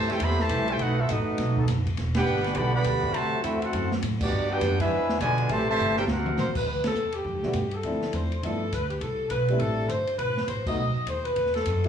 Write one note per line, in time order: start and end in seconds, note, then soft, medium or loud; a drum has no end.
0.02 snare soft
0.10 0.21 A3 medium
0.10 0.21 E4 medium
0.10 0.22 E4 medium
0.10 0.21 G4 medium
0.10 0.22 A4 medium
0.10 0.21 C5 medium
0.10 0.22 G5 loud
0.10 muted upright bass stroke soft
0.10 snare soft
0.10 ride medium
0.20 0.49 E2 loud
0.20 0.66 G3 medium
0.20 0.39 B3 loud
0.20 0.66 C4 medium
0.20 0.66 E4 medium
0.20 0.39 G4 medium
0.20 0.66 A4 medium
0.20 0.38 C5 medium
0.20 0.39 E5 loud
0.20 0.40 B5 loud
0.20 kick soft
0.20 ride medium
0.31 snare soft
0.40 0.69 A2 medium
0.40 0.69 E3 loud
0.40 0.69 A3 medium
0.40 0.69 G4 medium
0.40 0.69 C5 medium
0.40 0.69 E5 loud
0.40 0.69 A5 loud
0.40 snare medium
0.49 0.79 C2 loud
0.49 kick soft
0.49 hi-hat pedal medium
0.49 ride medium
0.68 0.80 A3 medium
0.68 0.80 E4 medium
0.68 0.81 E4 medium
0.68 0.80 G4 medium
0.68 0.80 A4 medium
0.68 0.81 C5 medium
0.68 0.81 G5 loud
0.68 ride medium
0.79 1.08 B1 medium
0.79 0.99 A3 medium
0.79 0.99 D#4 medium
0.79 0.98 F#4 medium
0.79 0.98 A4 medium
0.79 0.99 B4 medium
0.79 0.99 F#5 loud
0.79 kick soft
0.79 ride medium
1.00 1.10 C4 medium
1.00 1.11 E4 medium
1.00 1.10 F#4 medium
1.00 1.10 A4 medium
1.00 1.10 E5 loud
1.09 1.26 A1 medium
1.09 1.68 F#3 medium
1.09 1.69 A3 medium
1.09 1.69 B3 medium
1.09 1.68 D#4 medium
1.09 1.69 F#4 medium
1.09 1.69 A4 medium
1.09 1.69 D#5 medium
1.09 kick soft
1.09 hi-hat pedal medium
1.09 ride medium
1.27 muted upright bass stroke soft
1.38 1.67 B1 loud
1.38 kick soft
1.38 snare soft
1.38 ride medium
1.57 1.65 F#3 medium
1.57 1.65 B3 medium
1.57 1.65 D#4 medium
1.57 1.65 A4 loud
1.57 kick medium
1.68 1.97 F#1 loud
1.68 kick soft
1.68 snare soft
1.68 hi-hat pedal medium
1.68 ride loud
1.87 kick medium
1.87 ride medium
1.97 2.26 E1 medium
1.97 snare soft
1.97 ride medium
2.15 2.53 B3 medium
2.15 2.54 D4 medium
2.15 2.54 D4 loud
2.15 2.54 G4 loud
2.15 2.54 B4 loud
2.15 2.54 F#5 loud
2.15 2.54 G5 loud
2.15 snare medium
2.15 ride medium
2.26 2.55 G1 loud
2.26 hi-hat pedal medium
2.36 snare soft
2.44 snare soft
2.44 ride soft
2.54 2.85 B1 loud
2.54 2.72 D3 loud
2.54 3.00 E3 loud
2.54 2.72 G3 loud
2.54 3.00 G3 medium
2.54 2.72 B3 medium
2.54 3.00 D4 medium
2.54 3.00 F#4 loud
2.54 2.73 G4 medium
2.54 2.73 D5 medium
2.54 2.73 F#5 medium
2.54 2.73 B5 loud
2.54 kick soft
2.54 ride medium
2.73 3.12 D3 loud
2.73 3.12 G3 medium
2.73 3.12 B3 medium
2.73 3.12 G4 loud
2.73 3.12 D5 medium
2.73 3.12 F#5 loud
2.73 3.12 B5 loud
2.84 3.13 D2 loud
2.84 kick soft
2.84 hi-hat pedal medium
2.84 ride medium
3.04 3.11 E3 medium
3.04 3.12 C4 medium
3.04 3.12 D4 medium
3.04 3.11 F#4 loud
3.04 kick medium
3.13 3.31 D2 medium
3.13 3.44 C3 medium
3.13 3.43 F#3 medium
3.13 3.41 A3 medium
3.13 3.41 F#4 loud
3.13 3.44 C5 loud
3.13 3.41 E5 loud
3.13 3.44 A5 loud
3.13 kick soft
3.13 ride medium
3.33 muted upright bass stroke soft
3.42 3.61 E2 medium
3.42 3.88 E3 medium
3.42 3.60 A3 medium
3.42 3.59 C4 medium
3.42 3.60 C4 medium
3.42 3.88 C4 medium
3.42 3.88 D4 medium
3.42 3.60 E4 medium
3.42 3.60 F#4 medium
3.42 3.88 F#4 medium
3.42 3.60 A4 medium
3.42 3.60 E5 medium
3.42 kick soft
3.42 hi-hat pedal medium
3.42 ride medium
3.60 3.91 A3 medium
3.60 3.91 C4 medium
3.60 3.92 E4 medium
3.60 3.91 F#4 medium
3.60 3.92 A4 medium
3.60 3.92 C5 medium
3.60 3.92 F#5 medium
3.60 muted upright bass stroke soft
3.60 ride medium
3.73 4.02 F#2 loud
3.73 kick soft
3.73 ride medium
3.92 snare medium
4.02 4.31 A2 loud
4.02 kick soft
4.02 hi-hat pedal medium
4.02 ride medium
4.19 4.47 F#3 medium
4.19 4.48 B3 medium
4.19 4.49 B3 medium
4.19 4.48 D4 medium
4.19 4.49 F#4 medium
4.19 4.49 G4 medium
4.19 4.49 D5 loud
4.19 kick loud
4.19 crash loud
4.32 4.60 G2 medium
4.49 4.58 F#3 loud
4.49 4.57 B3 medium
4.49 4.79 B3 medium
4.49 4.57 D4 medium
4.49 4.80 D4 medium
4.49 4.80 D4 loud
4.49 4.81 F#4 loud
4.49 4.58 G4 loud
4.49 4.79 G4 medium
4.49 4.80 B4 medium
4.49 4.81 G5 loud
4.61 4.90 F#2 loud
4.61 kick soft
4.61 snare soft
4.61 hi-hat pedal medium
4.61 ride medium
4.80 5.17 G#3 medium
4.80 5.17 B3 medium
4.80 5.18 D4 medium
4.80 5.17 E4 medium
4.80 5.18 G#4 medium
4.80 5.18 B4 loud
4.80 5.18 E5 loud
4.80 kick medium
4.80 ride medium
4.90 5.19 E2 loud
4.90 5.34 F3 medium
4.90 5.35 D4 medium
4.90 5.35 E4 medium
4.90 5.34 B4 loud
4.90 kick soft
5.09 snare medium
5.20 5.48 B1 loud
5.20 5.48 B2 loud
5.20 5.47 D3 loud
5.20 5.48 G#3 loud
5.20 5.48 F4 medium
5.20 5.48 B4 medium
5.20 5.48 D5 medium
5.20 5.48 G#5 loud
5.20 kick soft
5.20 hi-hat pedal medium
5.20 ride medium
5.38 ride medium
5.49 5.77 A1 medium
5.49 5.67 C3 loud
5.49 5.67 E3 loud
5.49 5.93 G3 loud
5.49 5.67 A3 loud
5.49 5.93 C4 medium
5.49 5.93 E4 medium
5.49 5.68 G4 loud
5.49 5.93 A4 loud
5.49 5.69 C5 loud
5.49 5.68 E5 loud
5.49 5.68 A5 loud
5.49 kick soft
5.49 ride medium
5.68 5.95 C3 loud
5.68 5.95 E3 medium
5.68 5.95 A3 loud
5.68 5.96 G4 loud
5.68 5.96 C5 loud
5.68 5.96 E5 loud
5.68 5.96 A5 loud
5.78 6.07 G1 loud
5.78 hi-hat pedal medium
5.96 6.05 F#3 loud
5.96 6.04 C4 loud
5.96 6.02 C4 medium
5.96 6.04 D4 medium
5.96 6.03 E4 medium
5.96 6.03 G4 medium
5.96 6.03 A4 medium
5.96 6.04 A#4 loud
5.96 6.03 C5 medium
5.96 6.03 G5 loud
5.96 snare medium
6.07 6.36 D2 loud
6.07 6.53 A#3 medium
6.07 6.53 C4 medium
6.07 6.53 F#4 medium
6.07 6.53 A#4 medium
6.07 6.53 F5 medium
6.07 6.53 F#5 medium
6.07 snare loud
6.26 mid tom loud
6.37 6.65 A#1 medium
6.37 6.55 C5 loud
6.37 snare medium
6.37 hi-hat pedal medium
6.55 6.66 B4 medium
6.55 kick medium
6.55 crash loud
6.66 6.94 D2 medium
6.66 6.84 B4 medium
6.66 kick soft
6.84 7.13 A4 medium
6.84 snare medium
6.84 ride medium
6.95 7.24 E2 medium
6.95 hi-hat pedal medium
7.12 7.73 G4 medium
7.12 ride medium
7.25 7.34 F#2 medium
7.25 kick soft
7.34 7.43 D2 medium
7.43 7.54 B1 medium
7.43 7.54 G3 medium
7.43 7.54 A3 medium
7.43 7.54 B3 medium
7.43 7.54 D4 medium
7.43 7.55 F#4 medium
7.43 snare soft
7.53 7.83 G2 loud
7.53 kick soft
7.53 hi-hat pedal medium
7.53 ride medium
7.71 8.14 A4 loud
7.71 ride soft
7.83 8.12 D2 medium
7.83 8.28 F3 soft
7.83 8.28 A3 medium
7.83 8.28 C4 medium
7.83 8.29 D4 medium
7.83 8.29 E4 medium
7.83 kick soft
7.83 ride medium
8.02 snare soft
8.13 8.42 E2 medium
8.13 8.43 C5 medium
8.13 kick soft
8.13 hi-hat pedal medium
8.13 ride medium
8.32 ride soft
8.43 8.71 G2 medium
8.43 8.59 F3 medium
8.43 8.60 A3 medium
8.43 8.60 B3 soft
8.43 8.60 D4 medium
8.43 8.60 E4 medium
8.43 8.71 A4 medium
8.43 kick soft
8.43 ride medium
8.72 9.00 D2 loud
8.72 8.91 B4 loud
8.72 kick soft
8.72 hi-hat pedal medium
8.72 ride medium
8.90 9.01 G4 medium
8.90 ride soft
9.01 9.30 C2 medium
9.01 9.31 A4 loud
9.01 kick soft
9.01 ride medium
9.30 9.59 B1 medium
9.30 9.58 B4 medium
9.30 kick soft
9.30 hi-hat pedal medium
9.30 ride medium
9.48 9.88 G3 medium
9.48 9.88 A3 medium
9.48 9.88 C4 medium
9.48 9.88 D4 medium
9.48 9.89 E4 medium
9.48 ride soft
9.59 9.89 A1 medium
9.59 9.87 A4 loud
9.59 kick soft
9.59 ride medium
9.89 10.18 G1 medium
9.89 10.19 C5 loud
9.89 kick soft
9.89 hi-hat pedal medium
9.89 ride medium
10.07 ride medium
10.18 10.28 B1 medium
10.18 10.46 B4 loud
10.18 kick soft
10.18 ride medium
10.28 10.37 A1 medium
10.37 10.47 F#1 medium
10.37 snare medium
10.47 10.76 A1 medium
10.47 10.65 C5 medium
10.47 kick soft
10.47 hi-hat pedal medium
10.47 ride medium
10.66 10.77 F#3 medium
10.66 10.77 A3 medium
10.66 10.78 B3 medium
10.66 10.78 D#4 medium
10.66 10.78 F#4 medium
10.66 11.05 D#5 loud
10.66 kick medium
10.66 crash medium
10.77 10.94 B1 loud
11.06 11.36 D#2 medium
11.06 11.26 C5 loud
11.06 kick soft
11.06 hi-hat pedal medium
11.06 ride medium
11.24 11.55 B4 medium
11.24 ride medium
11.36 11.65 E2 medium
11.36 kick soft
11.36 ride medium
11.46 snare soft
11.54 11.82 A4 medium
11.54 snare soft
11.54 ride soft
11.65 11.88 F#2 medium
11.65 kick soft
11.65 hi-hat pedal medium
11.65 ride medium
11.84 11.88 E3 medium
11.84 11.88 G3 medium
11.84 ride soft